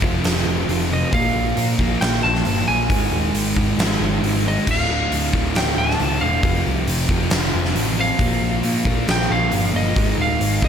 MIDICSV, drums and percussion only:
0, 0, Header, 1, 2, 480
1, 0, Start_track
1, 0, Tempo, 441501
1, 1232, Time_signature, 4, 2, 24, 8
1, 11615, End_track
2, 0, Start_track
2, 0, Title_t, "Drums"
2, 25, Note_on_c, 9, 36, 84
2, 133, Note_off_c, 9, 36, 0
2, 263, Note_on_c, 9, 46, 65
2, 275, Note_on_c, 9, 38, 112
2, 372, Note_off_c, 9, 46, 0
2, 384, Note_off_c, 9, 38, 0
2, 751, Note_on_c, 9, 46, 57
2, 860, Note_off_c, 9, 46, 0
2, 1226, Note_on_c, 9, 36, 102
2, 1228, Note_on_c, 9, 46, 53
2, 1335, Note_off_c, 9, 36, 0
2, 1336, Note_off_c, 9, 46, 0
2, 1706, Note_on_c, 9, 46, 55
2, 1815, Note_off_c, 9, 46, 0
2, 1946, Note_on_c, 9, 36, 83
2, 2055, Note_off_c, 9, 36, 0
2, 2188, Note_on_c, 9, 46, 56
2, 2200, Note_on_c, 9, 38, 119
2, 2297, Note_off_c, 9, 46, 0
2, 2309, Note_off_c, 9, 38, 0
2, 2557, Note_on_c, 9, 38, 33
2, 2663, Note_on_c, 9, 46, 57
2, 2665, Note_off_c, 9, 38, 0
2, 2772, Note_off_c, 9, 46, 0
2, 3150, Note_on_c, 9, 46, 60
2, 3151, Note_on_c, 9, 36, 105
2, 3259, Note_off_c, 9, 46, 0
2, 3260, Note_off_c, 9, 36, 0
2, 3638, Note_on_c, 9, 46, 64
2, 3747, Note_off_c, 9, 46, 0
2, 3876, Note_on_c, 9, 36, 83
2, 3984, Note_off_c, 9, 36, 0
2, 4120, Note_on_c, 9, 46, 64
2, 4132, Note_on_c, 9, 38, 119
2, 4229, Note_off_c, 9, 46, 0
2, 4241, Note_off_c, 9, 38, 0
2, 4607, Note_on_c, 9, 46, 63
2, 4716, Note_off_c, 9, 46, 0
2, 5081, Note_on_c, 9, 36, 93
2, 5083, Note_on_c, 9, 49, 94
2, 5189, Note_off_c, 9, 36, 0
2, 5191, Note_off_c, 9, 49, 0
2, 5565, Note_on_c, 9, 46, 56
2, 5674, Note_off_c, 9, 46, 0
2, 5800, Note_on_c, 9, 36, 81
2, 5909, Note_off_c, 9, 36, 0
2, 6036, Note_on_c, 9, 46, 64
2, 6048, Note_on_c, 9, 38, 115
2, 6145, Note_off_c, 9, 46, 0
2, 6157, Note_off_c, 9, 38, 0
2, 6420, Note_on_c, 9, 38, 30
2, 6520, Note_on_c, 9, 46, 52
2, 6528, Note_off_c, 9, 38, 0
2, 6628, Note_off_c, 9, 46, 0
2, 6993, Note_on_c, 9, 46, 56
2, 6994, Note_on_c, 9, 36, 108
2, 7101, Note_off_c, 9, 46, 0
2, 7103, Note_off_c, 9, 36, 0
2, 7474, Note_on_c, 9, 46, 63
2, 7583, Note_off_c, 9, 46, 0
2, 7708, Note_on_c, 9, 36, 85
2, 7816, Note_off_c, 9, 36, 0
2, 7939, Note_on_c, 9, 46, 63
2, 7951, Note_on_c, 9, 38, 115
2, 8047, Note_off_c, 9, 46, 0
2, 8059, Note_off_c, 9, 38, 0
2, 8318, Note_on_c, 9, 38, 34
2, 8426, Note_off_c, 9, 38, 0
2, 8432, Note_on_c, 9, 46, 67
2, 8541, Note_off_c, 9, 46, 0
2, 8907, Note_on_c, 9, 36, 99
2, 8907, Note_on_c, 9, 46, 58
2, 9015, Note_off_c, 9, 36, 0
2, 9016, Note_off_c, 9, 46, 0
2, 9386, Note_on_c, 9, 46, 55
2, 9495, Note_off_c, 9, 46, 0
2, 9625, Note_on_c, 9, 36, 84
2, 9734, Note_off_c, 9, 36, 0
2, 9868, Note_on_c, 9, 46, 56
2, 9880, Note_on_c, 9, 38, 120
2, 9977, Note_off_c, 9, 46, 0
2, 9989, Note_off_c, 9, 38, 0
2, 10346, Note_on_c, 9, 46, 61
2, 10454, Note_off_c, 9, 46, 0
2, 10832, Note_on_c, 9, 46, 50
2, 10833, Note_on_c, 9, 36, 106
2, 10941, Note_off_c, 9, 36, 0
2, 10941, Note_off_c, 9, 46, 0
2, 11316, Note_on_c, 9, 46, 59
2, 11425, Note_off_c, 9, 46, 0
2, 11550, Note_on_c, 9, 36, 78
2, 11615, Note_off_c, 9, 36, 0
2, 11615, End_track
0, 0, End_of_file